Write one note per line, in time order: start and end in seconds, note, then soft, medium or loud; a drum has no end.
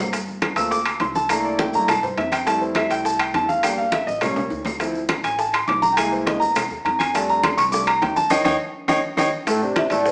0.00 0.51 G1 medium
0.00 0.10 A#3 medium
0.00 0.11 C4 medium
0.13 high bongo medium
0.13 high conga soft
0.13 high timbale medium
0.13 maracas medium
0.28 high conga soft
0.28 maracas soft
0.42 high bongo medium
0.42 high conga medium
0.42 high timbale medium
0.42 claves medium
0.42 maracas soft
0.55 0.97 D2 medium
0.55 0.76 A3 soft
0.55 0.76 A#3 soft
0.55 0.76 C4 soft
0.55 0.76 F4 medium
0.55 0.71 E6 medium
0.55 high bongo soft
0.55 high conga soft
0.55 high timbale medium
0.55 maracas medium
0.71 0.99 D6 medium
0.71 high bongo medium
0.71 high conga soft
0.71 maracas medium
0.86 high bongo soft
0.86 high conga soft
0.86 high timbale loud
0.86 claves medium
0.86 maracas soft
1.00 1.68 C2 medium
1.00 1.15 C6 medium
1.00 high bongo soft
1.00 low bongo medium
1.00 high conga medium
1.00 high timbale medium
1.00 low timbale medium
1.00 maracas soft
1.15 1.30 A5 medium
1.15 high bongo soft
1.15 high conga medium
1.15 maracas medium
1.29 1.71 A3 medium
1.29 1.72 A#3 soft
1.29 1.72 D4 soft
1.29 1.72 E4 medium
1.29 1.44 A#5 medium
1.29 high bongo medium
1.29 high conga soft
1.29 high timbale loud
1.29 claves medium
1.29 maracas loud
1.44 1.59 D5 medium
1.44 high conga soft
1.44 maracas soft
1.59 1.74 G5 medium
1.59 high bongo medium
1.59 high conga loud
1.59 high timbale medium
1.59 maracas soft
1.73 2.01 G2 medium
1.73 1.87 A3 soft
1.73 1.88 A#3 soft
1.73 1.88 D4 soft
1.73 1.88 E4 medium
1.73 1.89 A#5 loud
1.73 high bongo soft
1.73 high conga soft
1.73 maracas medium
1.88 2.03 A5 medium
1.88 high bongo medium
1.88 high conga soft
1.88 low conga medium
1.88 high timbale loud
1.88 claves medium
1.88 maracas medium
2.03 2.17 G2 medium
2.03 2.17 C5 medium
2.03 high bongo soft
2.03 high conga soft
2.03 low conga medium
2.03 maracas soft
2.17 2.85 F2 loud
2.17 2.32 E5 medium
2.17 high bongo soft
2.17 low bongo medium
2.17 high conga soft
2.17 high timbale medium
2.17 low timbale medium
2.17 maracas soft
2.32 2.46 G5 loud
2.32 high bongo soft
2.32 high conga medium
2.32 high timbale medium
2.32 claves medium
2.32 maracas medium
2.46 3.59 G3 medium
2.46 3.60 A3 soft
2.46 3.60 E4 medium
2.46 2.61 A5 loud
2.46 high bongo medium
2.46 high conga soft
2.46 high timbale medium
2.46 maracas medium
2.61 2.76 C5 medium
2.61 high conga soft
2.61 maracas soft
2.75 2.90 E5 medium
2.75 high bongo medium
2.75 high conga loud
2.75 high timbale medium
2.75 claves medium
2.75 maracas soft
2.90 3.31 C2 medium
2.90 3.05 G5 loud
2.90 high bongo soft
2.90 high conga soft
2.90 high timbale medium
2.90 maracas medium
3.05 3.20 A5 medium
3.05 high bongo medium
3.05 high conga soft
3.05 maracas medium
3.19 3.34 G5 loud
3.19 high bongo soft
3.19 high conga soft
3.19 high timbale loud
3.19 claves medium
3.34 4.02 E2 loud
3.34 3.49 A5 loud
3.34 high bongo soft
3.34 low bongo medium
3.34 high conga medium
3.34 high timbale medium
3.34 maracas soft
3.49 3.63 F5 medium
3.49 high bongo soft
3.49 high conga medium
3.49 maracas medium
3.63 3.83 G3 soft
3.63 3.83 A#3 soft
3.63 3.83 D4 medium
3.63 3.78 G5 medium
3.63 high bongo medium
3.63 high conga soft
3.63 high timbale loud
3.63 claves medium
3.63 maracas medium
3.78 3.92 F5 medium
3.78 high conga soft
3.78 maracas soft
3.92 4.07 E5 medium
3.92 high bongo medium
3.92 high conga loud
3.92 high timbale medium
3.92 maracas soft
4.07 4.35 A1 medium
4.07 4.21 D#5 medium
4.07 high bongo soft
4.07 high conga soft
4.07 maracas medium
4.21 4.41 G3 medium
4.21 4.42 A#3 soft
4.21 4.42 C#4 medium
4.21 4.63 C#5 medium
4.21 high bongo medium
4.21 high conga soft
4.21 low conga medium
4.21 high timbale medium
4.21 claves medium
4.21 maracas medium
4.36 4.50 C#2 medium
4.36 high bongo soft
4.36 high conga soft
4.36 low conga medium
4.36 high timbale medium
4.36 maracas soft
4.50 5.19 D2 medium
4.50 high bongo soft
4.50 low bongo medium
4.50 high conga soft
4.50 maracas soft
4.65 high bongo soft
4.65 high conga medium
4.65 low timbale medium
4.65 claves medium
4.65 maracas medium
4.80 5.00 F3 medium
4.80 5.00 C4 soft
4.80 5.00 E4 medium
4.80 high bongo medium
4.80 high conga soft
4.80 high timbale medium
4.80 maracas loud
4.94 high conga soft
4.94 maracas soft
5.09 high bongo medium
5.09 high conga loud
5.09 high timbale loud
5.09 claves medium
5.09 maracas soft
5.24 5.65 A1 loud
5.24 5.38 G#5 medium
5.24 high bongo soft
5.24 high conga soft
5.24 high timbale medium
5.24 maracas medium
5.38 5.53 A5 medium
5.38 high bongo medium
5.38 high conga soft
5.38 maracas medium
5.53 5.68 C6 loud
5.53 high bongo soft
5.53 high conga soft
5.53 high timbale loud
5.53 claves medium
5.53 maracas soft
5.68 6.36 C2 loud
5.68 5.82 D6 loud
5.68 high bongo soft
5.68 low bongo medium
5.68 high conga medium
5.68 high timbale medium
5.68 low timbale medium
5.68 maracas soft
5.82 5.97 A#5 loud
5.82 high bongo soft
5.82 high conga medium
5.82 maracas medium
5.93 6.38 G#3 medium
5.93 6.39 A#3 soft
5.93 5.95 G5 medium
5.97 6.39 E4 medium
5.97 6.11 G#5 medium
5.97 high bongo medium
5.97 high conga soft
5.97 high timbale loud
5.97 claves medium
5.97 maracas loud
6.12 6.26 C5 medium
6.12 high conga soft
6.12 maracas soft
6.26 6.41 D#5 medium
6.26 high bongo medium
6.26 high conga loud
6.26 high timbale medium
6.26 maracas soft
6.40 6.68 E2 loud
6.40 6.68 A#5 loud
6.40 high bongo soft
6.40 high conga soft
6.40 maracas medium
6.55 high bongo medium
6.55 high conga soft
6.55 low conga medium
6.55 high timbale loud
6.55 claves medium
6.55 maracas medium
6.70 6.84 D#2 medium
6.70 high bongo soft
6.70 high conga soft
6.70 maracas soft
6.85 7.53 F2 loud
6.85 6.99 A#5 medium
6.85 high bongo soft
6.85 low bongo medium
6.85 high conga soft
6.85 high timbale medium
6.85 maracas soft
6.99 7.13 G#5 medium
6.99 high bongo soft
6.99 high conga medium
6.99 high timbale medium
6.99 claves medium
6.99 maracas medium
7.14 7.55 G3 medium
7.14 7.56 A3 medium
7.14 7.56 D4 medium
7.14 7.29 A5 medium
7.14 high bongo medium
7.14 high conga soft
7.14 high timbale medium
7.14 maracas loud
7.29 7.43 A#5 loud
7.29 high conga soft
7.29 maracas soft
7.43 7.58 C6 medium
7.43 high bongo medium
7.43 high conga loud
7.43 high timbale loud
7.43 claves medium
7.43 maracas soft
7.58 7.99 C2 loud
7.58 7.72 C#6 loud
7.58 high bongo soft
7.58 high conga soft
7.58 high timbale medium
7.58 maracas medium
7.71 7.85 G3 soft
7.71 7.85 A3 soft
7.71 7.86 D4 medium
7.71 7.86 D6 medium
7.71 high bongo medium
7.71 high conga soft
7.71 maracas loud
7.87 8.01 A#5 loud
7.87 high bongo soft
7.87 high conga soft
7.87 high timbale loud
7.87 claves medium
8.02 8.29 D#2 loud
8.02 8.16 G5 medium
8.02 high bongo soft
8.02 low bongo medium
8.02 high conga medium
8.02 high timbale medium
8.02 low timbale medium
8.02 maracas soft
8.16 8.30 A5 loud
8.16 high bongo soft
8.16 high conga medium
8.16 maracas medium
8.30 8.41 D#2 medium
8.30 8.40 C#5 medium
8.30 8.40 D#5 loud
8.30 8.40 G5 loud
8.30 low bongo medium
8.30 high conga loud
8.30 high timbale loud
8.30 claves loud
8.30 maracas loud
8.45 8.56 D#2 loud
8.45 8.54 C#5 loud
8.45 8.54 D#5 loud
8.45 8.54 G5 loud
8.45 low bongo medium
8.45 high conga loud
8.45 high timbale loud
8.45 claves loud
8.45 maracas loud
8.88 9.00 D#2 loud
8.88 8.98 C#5 loud
8.88 8.98 D#5 medium
8.88 8.98 G5 loud
8.88 low bongo loud
8.88 high conga loud
8.88 high timbale loud
8.88 claves loud
8.88 maracas medium
9.17 9.29 D#2 loud
9.17 9.28 C#5 loud
9.17 9.28 D#5 loud
9.17 9.28 G5 loud
9.17 low bongo loud
9.17 high conga loud
9.17 high timbale loud
9.17 claves loud
9.17 maracas loud
9.47 9.59 A2 medium
9.47 9.59 A3 medium
9.47 9.60 A4 medium
9.47 high bongo medium
9.47 high conga soft
9.47 high timbale medium
9.47 maracas loud
9.62 9.86 C3 medium
9.62 9.86 C4 medium
9.62 9.86 D4 medium
9.62 high conga soft
9.62 maracas soft
9.76 9.92 E5 medium
9.76 high bongo medium
9.76 high conga loud
9.76 high timbale medium
9.76 maracas soft
9.90 10.12 A1 medium
9.90 10.12 A2 medium
9.90 10.12 A3 medium
9.90 10.12 A4 medium
9.90 10.05 D5 medium
9.90 high bongo soft
9.90 high conga soft
9.90 high timbale medium
9.90 maracas medium
10.06 10.12 C5 medium
10.06 high bongo medium
10.06 high conga soft
10.06 maracas medium